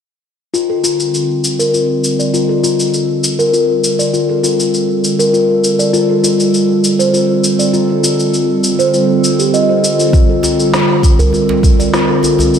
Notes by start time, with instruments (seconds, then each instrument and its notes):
0.54 ambient pad D3, steel tongue drum F4, shaker
0.70 steel tongue drum A4
0.84 ambient pad C4, steel tongue drum F4, shaker
0.90 ambient pad G3
1.00 shaker
1.14 shaker
1.44 shaker
1.59 steel tongue drum A#4, shaker
1.74 steel tongue drum F4, shaker
2.04 shaker
2.19 ambient pad F4, steel tongue drum D5, shaker
2.34 steel tongue drum F4, shaker
2.49 steel tongue drum A4
2.58 ambient pad A4
2.64 steel tongue drum F4, shaker
2.80 shaker
2.94 shaker
3.24 shaker
3.39 steel tongue drum A#4, shaker
3.53 steel tongue drum F4, shaker
3.84 shaker
3.99 steel tongue drum D5, shaker
4.13 steel tongue drum F4, shaker
4.29 steel tongue drum A4
4.43 steel tongue drum F4, shaker
4.60 shaker
4.74 shaker
5.04 shaker
5.19 steel tongue drum A#4, shaker
5.33 steel tongue drum F4, shaker
5.64 shaker
5.79 steel tongue drum D5, shaker
5.93 steel tongue drum F4, shaker
6.09 steel tongue drum A4
6.24 steel tongue drum F4, shaker
6.40 shaker
6.54 shaker
6.84 shaker
6.99 steel tongue drum C5, shaker
7.14 steel tongue drum F4, shaker
7.44 shaker
7.59 steel tongue drum D5, shaker
7.73 steel tongue drum F4, shaker
7.89 steel tongue drum A4
8.04 steel tongue drum F4, shaker
8.20 shaker
8.34 shaker
8.64 shaker
8.79 steel tongue drum C5, shaker
8.93 steel tongue drum F4, shaker
9.24 shaker
9.39 steel tongue drum G4, shaker
9.54 steel tongue drum D#5, shaker
9.69 steel tongue drum C5
9.84 steel tongue drum F4, shaker
9.99 steel tongue drum F4, shaker
10.13 steel tongue drum F4, kick, shaker
10.30 steel tongue drum A4
10.43 steel tongue drum F4, djembe slap, shaker
10.60 shaker
10.74 snare, shaker
11.03 kick, djembe slap, shaker
11.19 steel tongue drum A#4, djembe bass, shaker
11.33 steel tongue drum F4, djembe tone, shaker
11.49 djembe slap
11.63 kick, djembe tone, shaker
11.79 steel tongue drum D5, djembe slap, shaker
11.94 steel tongue drum F4, snare, shaker
12.09 steel tongue drum A4
12.23 steel tongue drum F4, djembe slap, shaker
12.39 djembe tone, shaker
12.54 shaker